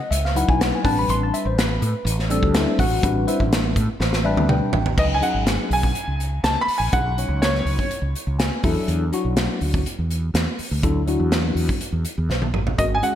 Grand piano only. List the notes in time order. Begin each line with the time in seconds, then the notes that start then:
4.99 D#5
5.14 G#5
5.23 F#5
5.73 G#5
6.44 A5
6.61 B5
6.78 G#5
6.93 F#5
7.42 C#5
12.78 D#5
12.95 G#5
13.03 F#5